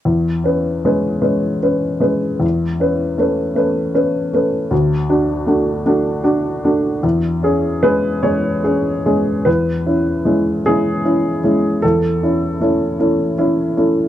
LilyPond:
\new Staff \with { instrumentName = "Upright piano" } { \time 6/8 \key e \mixolydian \tempo 4. = 51 << { r2. | r2. | r2. | r4 b'8 cis''4. |
b'4. gis'4. | a'4 r2 | } \\ { e,8 <cis' b'>8 <gis cis' b'>8 <gis cis' b'>8 <cis' b'>8 <gis cis' b'>8 | e,8 <cis' b'>8 <a cis' b'>8 <a cis' b'>8 <cis' b'>8 <a cis' b'>8 | d,8 <d' fis'>8 <a d' fis'>8 <a d' fis'>8 <d' fis'>8 <a d' fis'>8 | e,8 <cis' gis'>8 <gis cis' gis'>8 <gis cis' gis'>8 <cis' gis'>8 <gis cis' gis'>8 |
e,8 <cis' e'>8 <gis cis' e'>8 <gis cis' e'>8 <cis' e'>8 <gis cis' e'>8 | e,8 <cis' e'>8 <a cis' e'>8 <a cis' e'>8 <cis' e'>8 <a cis' e'>8 | } >> }